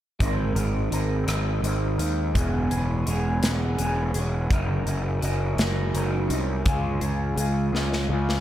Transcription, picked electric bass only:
0.20 0.54 G#1 medium
0.55 0.89 G#1 medium
0.91 1.25 G#1 medium
1.27 1.61 G#1 medium
1.62 1.96 G#1 medium
1.98 2.32 D#2 medium
2.35 2.68 E1 medium
2.70 3.04 E1 medium
3.06 3.40 E1 medium
3.42 3.76 E1 medium
3.78 4.12 E1 medium
4.14 4.48 E1 medium
4.50 4.84 F#1 medium
4.86 5.20 F#1 medium
5.22 5.56 F#1 medium
5.57 5.91 F#1 medium
5.94 6.28 F#1 medium
6.30 6.63 C2 medium
6.65 6.99 C#2 medium
7.01 7.35 C#2 medium
7.36 7.71 C#2 medium
7.73 8.07 C#2 medium
8.09 8.40 C#2 medium

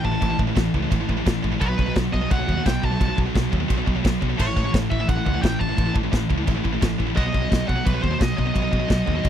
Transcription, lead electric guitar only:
0.05 0.37 A5 loud
1.61 1.94 B4 medium
2.13 2.31 D#5 medium
2.31 2.63 F#5 loud
2.66 2.84 G5 loud
2.84 3.18 A5 loud
4.41 4.73 C#5 medium
4.91 5.09 E5 medium
5.08 5.41 F#5 loud
5.42 5.59 G5 loud
5.59 5.95 A5 loud
7.17 7.68 D#5 loud
7.68 7.86 F#5 loud
7.85 8.01 B4 loud
8.03 8.21 C5 loud
8.21 8.38 D#5 loud
8.39 9.29 D#5 medium

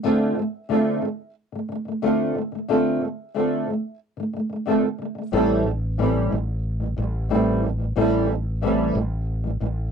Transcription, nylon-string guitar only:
0.03 0.35 D3 medium
0.03 0.37 A3 medium
0.03 0.38 C4 medium
0.03 0.38 F4 medium
0.03 0.38 A4 medium
0.36 0.63 D3 medium
0.36 0.65 A3 medium
0.69 1.01 D3 medium
0.69 1.03 A3 medium
0.69 1.03 C4 medium
0.69 1.04 F4 medium
0.69 1.04 A4 medium
1.02 1.29 D3 medium
1.02 1.31 A3 medium
1.52 1.67 D3 soft
1.52 1.71 A3 medium
1.69 1.84 D3 medium
1.69 1.87 A3 medium
1.85 2.01 D3 soft
1.85 2.02 A3 soft
2.02 2.34 D3 medium
2.02 2.36 A3 medium
2.02 2.36 C4 medium
2.02 2.36 F4 medium
2.02 2.37 A4 medium
2.35 2.51 D3 medium
2.35 2.53 A3 medium
2.52 2.67 D3 soft
2.52 2.68 A3 soft
2.68 3.00 D3 medium
2.68 3.02 A3 medium
2.68 3.02 C4 medium
2.68 3.02 F4 medium
2.68 3.03 A4 medium
3.01 3.28 D3 medium
3.01 3.30 A3 medium
3.34 3.66 D3 medium
3.34 3.68 A3 medium
3.34 3.68 C4 medium
3.34 3.69 F4 medium
3.34 3.69 A4 medium
3.67 3.94 D3 medium
3.67 3.95 A3 medium
4.17 4.32 D3 medium
4.17 4.35 A3 medium
4.33 4.48 D3 medium
4.33 4.52 A3 medium
4.50 4.64 D3 soft
4.50 4.66 A3 soft
4.66 4.81 D3 medium
4.66 4.83 A3 medium
4.66 4.83 C4 medium
4.66 4.84 F4 medium
4.66 4.84 A4 medium
4.82 4.97 D3 soft
4.82 5.01 A3 soft
4.98 5.14 D3 medium
4.98 5.17 A3 medium
5.15 5.32 D3 soft
5.15 5.32 A3 soft
5.32 5.63 A2 medium
5.32 5.65 E3 medium
5.32 5.66 G3 medium
5.32 5.66 C4 medium
5.32 5.66 E4 medium
5.32 5.66 A4 medium
5.65 5.91 A2 medium
5.65 5.92 E3 medium
5.65 5.93 G3 medium
5.98 6.30 A2 medium
5.98 6.31 E3 medium
5.98 6.32 G3 medium
5.98 6.32 C4 medium
5.98 6.32 E4 medium
5.98 6.32 A4 medium
6.31 6.58 A2 medium
6.31 6.58 E3 medium
6.31 6.59 G3 medium
6.80 6.95 A2 soft
6.80 6.97 E3 medium
6.80 6.98 G3 medium
6.97 7.23 A2 soft
6.97 7.24 E3 medium
6.97 7.25 G3 medium
7.29 7.61 A2 medium
7.29 7.63 E3 medium
7.29 7.63 G3 medium
7.29 7.63 C4 medium
7.29 7.64 E4 medium
7.29 7.64 A4 medium
7.63 7.77 A2 medium
7.63 7.78 E3 medium
7.63 7.80 G3 medium
7.78 7.94 A2 soft
7.78 7.95 E3 soft
7.78 7.96 G3 soft
7.96 8.27 A2 medium
7.96 8.28 E3 medium
7.96 8.29 G3 medium
7.96 8.29 C4 medium
7.96 8.30 E4 medium
7.96 8.30 A4 medium
8.28 8.55 A2 medium
8.28 8.56 E3 medium
8.28 8.56 G3 medium
8.62 8.94 A2 medium
8.62 8.95 E3 medium
8.62 8.95 G3 medium
8.62 8.95 C4 medium
8.62 8.95 E4 medium
8.62 8.96 A4 medium
8.95 9.21 A2 medium
8.95 9.22 E3 medium
8.95 9.23 G3 medium
9.44 9.59 A2 medium
9.44 9.61 E3 soft
9.44 9.62 G3 medium
9.60 9.87 A2 medium
9.60 9.88 E3 medium
9.60 9.88 G3 medium

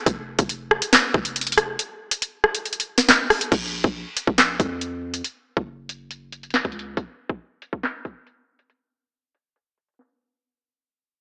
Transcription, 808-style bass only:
0.06 0.37 F1 loud
0.39 0.80 F1 loud
1.14 1.76 F1 loud
3.52 3.83 A#1 loud
3.84 4.05 A#1 loud
4.27 4.58 A#1 loud
4.60 5.22 F2 loud
5.57 6.61 F#1 loud
6.65 6.96 C#2 loud

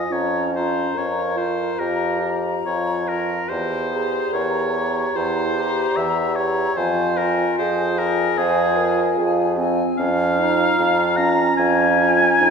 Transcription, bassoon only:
0.12 0.87 F2 soft
0.98 1.70 F2 soft
1.80 2.56 F2 medium
2.66 3.41 F2 soft
3.50 4.24 E2 medium
4.34 5.07 E2 medium
5.17 5.87 E2 medium
5.97 6.68 E2 medium
6.77 7.50 F2 medium
7.59 8.29 F2 medium
8.38 9.08 F2 medium
9.18 9.82 F2 medium
9.99 10.70 F2 medium
10.79 11.50 F2 medium
11.59 12.31 F2 medium
12.41 12.50 F2 medium

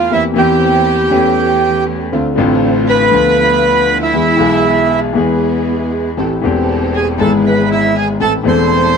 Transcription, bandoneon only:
0.00 0.11 F4 medium
0.00 0.13 F5 medium
0.12 0.24 E4 medium
0.12 0.23 E5 loud
0.38 1.84 G4 medium
0.38 1.84 G5 medium
2.90 3.98 B4 medium
2.90 3.98 B5 loud
4.03 5.00 E4 medium
4.03 4.99 E5 loud
6.97 7.08 G#4 medium
6.97 7.08 G#5 medium
7.21 7.33 A4 medium
7.21 7.32 A5 loud
7.47 7.70 B4 medium
7.47 7.69 B5 medium
7.72 7.95 E4 medium
7.72 7.97 E5 loud
7.97 8.08 G#4 medium
7.97 8.08 G#5 medium
8.22 8.33 A4 medium
8.22 8.33 A5 loud
8.48 8.97 C5 medium
8.48 8.97 C6 loud

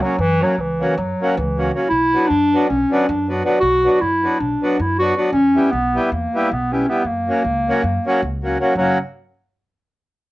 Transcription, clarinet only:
0.02 0.21 F#3 loud
0.20 0.44 E3 loud
0.43 0.61 F#3 loud
0.60 0.99 E3 loud
0.98 1.38 F#3 medium
1.37 1.74 E3 medium
1.89 2.29 E4 loud
2.28 2.68 D4 loud
2.68 3.09 C#4 loud
3.08 3.28 D4 medium
3.60 4.02 F#4 loud
4.00 4.41 E4 loud
4.40 4.82 D4 medium
4.81 4.98 E4 medium
4.99 5.15 F#4 loud
5.32 5.73 C#4 loud
5.71 6.04 B3 loud
6.04 6.14 B3 medium
6.12 6.54 A#3 medium
6.53 6.74 B3 medium
6.73 6.91 C#4 medium
6.89 7.07 B3 medium
7.06 8.44 A#3 medium
8.77 8.98 F#3 medium

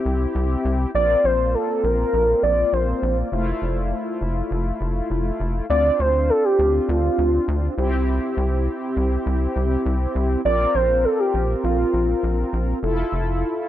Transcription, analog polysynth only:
0.00 0.91 C4 medium
0.00 0.91 E4 medium
0.00 0.91 G4 medium
0.95 3.28 A#3 medium
0.95 3.28 C4 medium
0.95 3.28 F4 medium
3.32 5.66 A3 medium
3.32 5.66 E4 medium
3.32 5.66 F4 medium
5.70 7.74 C4 medium
5.70 7.74 D4 medium
5.70 7.74 F4 medium
7.78 10.41 C4 medium
7.78 10.41 E4 medium
7.78 10.41 G4 medium
10.45 12.79 C4 medium
10.45 12.79 F4 medium
10.45 12.79 A#4 medium
12.83 13.69 E4 medium
12.83 13.69 F4 medium
12.83 13.69 A4 medium

